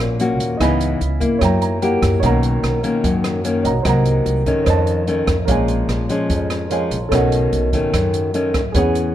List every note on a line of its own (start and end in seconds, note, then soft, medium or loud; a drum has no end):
0.00 0.40 A#1 medium
0.00 0.58 A#2 medium
0.00 0.16 A#3 medium
0.00 0.17 C#4 medium
0.00 0.17 F#4 medium
0.00 0.55 C#5 medium
0.00 0.56 F5 medium
0.00 0.57 F#5 medium
0.00 0.59 A#5 medium
0.20 0.57 A#3 medium
0.20 0.57 C#4 medium
0.20 0.58 F#4 medium
0.20 closed hi-hat soft
0.40 0.59 D#2 medium
0.40 closed hi-hat soft
0.57 0.98 C#2 medium
0.57 1.40 C#3 medium
0.57 1.01 E3 medium
0.57 1.01 B3 medium
0.57 1.01 D#4 medium
0.57 1.39 E4 medium
0.57 1.38 D#5 medium
0.57 1.40 G#5 soft
0.57 kick medium
0.57 cross-stick medium
0.57 closed hi-hat medium
0.63 1.41 B5 medium
0.81 closed hi-hat soft
1.01 1.20 C#2 medium
1.01 closed hi-hat soft
1.20 1.78 A#3 medium
1.20 1.79 E4 medium
1.20 kick medium
1.20 closed hi-hat soft
1.38 1.98 F#2 medium
1.38 2.21 F#3 medium
1.38 2.18 C#5 medium
1.38 2.21 E5 soft
1.38 kick medium
1.38 cross-stick medium
1.38 closed hi-hat medium
1.43 2.22 G5 medium
1.43 1.60 A#5 medium
1.62 1.81 A#5 medium
1.62 closed hi-hat soft
1.82 2.19 A#3 medium
1.82 2.20 E4 medium
1.82 2.20 G4 medium
1.82 2.20 F#5 medium
1.82 closed hi-hat soft
2.02 2.21 F#2 medium
2.02 kick medium
2.02 cross-stick medium
2.02 closed hi-hat soft
2.20 2.61 B1 loud
2.20 3.02 B2 medium
2.20 2.81 D#3 medium
2.20 2.81 A#3 medium
2.20 3.61 C#5 medium
2.20 3.62 D#5 medium
2.20 3.63 F#5 medium
2.20 kick medium
2.20 closed hi-hat medium
2.24 2.81 C#4 medium
2.24 3.64 A#5 medium
2.43 closed hi-hat soft
2.63 2.82 B1 medium
2.63 cross-stick medium
2.63 closed hi-hat soft
2.83 3.41 D#3 medium
2.83 3.41 A#3 medium
2.83 3.41 C#4 medium
2.83 closed hi-hat soft
3.04 3.66 F#2 medium
3.04 3.83 F#2 medium
3.04 kick medium
3.04 closed hi-hat medium
3.24 cross-stick medium
3.24 closed hi-hat soft
3.44 3.71 D#3 medium
3.44 3.71 A#3 medium
3.44 3.71 C#4 medium
3.44 closed hi-hat soft
3.63 3.84 B1 medium
3.63 3.84 C#5 soft
3.63 3.83 D#5 soft
3.63 3.85 F#5 soft
3.63 3.86 A#5 soft
3.63 closed hi-hat soft
3.83 4.23 C2 loud
3.83 4.65 C3 soft
3.83 4.43 F#3 medium
3.83 4.43 A#3 medium
3.83 4.44 D#4 medium
3.83 4.63 C5 medium
3.83 4.65 D#5 medium
3.83 4.66 F#5 medium
3.83 kick medium
3.83 cross-stick medium
3.83 closed hi-hat medium
3.89 4.67 A#5 medium
4.05 closed hi-hat soft
4.26 4.45 C2 medium
4.26 closed hi-hat soft
4.46 5.04 D#3 medium
4.46 5.04 A3 medium
4.46 5.05 C#4 medium
4.46 kick medium
4.46 closed hi-hat soft
4.64 5.46 F2 medium
4.64 5.24 F2 medium
4.64 5.45 C5 medium
4.64 5.46 C#5 soft
4.64 5.47 D#5 soft
4.64 kick medium
4.64 cross-stick medium
4.64 closed hi-hat medium
4.70 5.48 A5 medium
4.87 closed hi-hat soft
5.07 5.34 D#3 medium
5.07 5.34 A3 medium
5.07 5.34 C#4 medium
5.07 closed hi-hat soft
5.27 5.47 F2 medium
5.27 kick medium
5.27 cross-stick medium
5.27 closed hi-hat soft
5.45 5.86 A#1 loud
5.45 6.28 A#2 medium
5.45 6.06 F3 medium
5.45 6.06 G#3 medium
5.45 6.66 A#4 medium
5.45 6.67 C#5 soft
5.45 kick medium
5.45 closed hi-hat medium
5.49 6.07 C#4 medium
5.49 6.68 F5 medium
5.49 6.69 G#5 medium
5.68 closed hi-hat soft
5.88 6.08 A#1 medium
5.88 cross-stick medium
5.88 closed hi-hat soft
6.09 6.67 F3 medium
6.09 6.67 G#3 medium
6.09 6.68 C#4 medium
6.09 closed hi-hat soft
6.30 6.93 F2 medium
6.30 7.09 F2 medium
6.30 kick medium
6.30 closed hi-hat soft
6.50 cross-stick medium
6.50 closed hi-hat soft
6.69 6.97 F3 medium
6.69 6.97 G#3 medium
6.69 6.97 C#4 medium
6.69 7.11 A#4 soft
6.69 7.09 C#5 soft
6.69 7.11 F5 soft
6.69 7.12 G#5 soft
6.69 closed hi-hat soft
6.91 7.10 A#1 medium
6.91 closed hi-hat soft
7.09 7.49 B1 medium
7.09 7.91 B2 medium
7.09 7.69 D#3 medium
7.09 7.69 A3 medium
7.09 7.70 C#4 medium
7.09 8.70 A4 medium
7.09 8.71 C#5 medium
7.09 kick medium
7.09 cross-stick medium
7.09 closed hi-hat medium
7.13 8.72 D#5 medium
7.13 8.73 F#5 medium
7.32 closed hi-hat soft
7.52 7.71 B1 medium
7.52 closed hi-hat soft
7.73 8.31 D#3 medium
7.73 8.31 A3 medium
7.73 8.31 C#4 medium
7.73 kick medium
7.73 closed hi-hat soft
7.93 8.54 F#2 medium
7.93 8.73 F#2 medium
7.93 kick medium
7.93 cross-stick medium
7.93 closed hi-hat medium
8.14 closed hi-hat soft
8.34 8.60 D#3 medium
8.34 8.60 A3 medium
8.34 8.60 C#4 medium
8.34 closed hi-hat soft
8.54 8.73 D#2 medium
8.54 kick medium
8.54 cross-stick medium
8.54 closed hi-hat soft
8.72 9.12 E2 loud
8.72 9.15 E3 medium
8.72 9.15 B3 medium
8.72 9.15 C#4 medium
8.72 9.15 G#4 medium
8.72 9.15 B4 soft
8.72 9.15 C#5 medium
8.72 kick medium
8.72 closed hi-hat medium
8.78 9.15 F#5 medium
8.95 closed hi-hat soft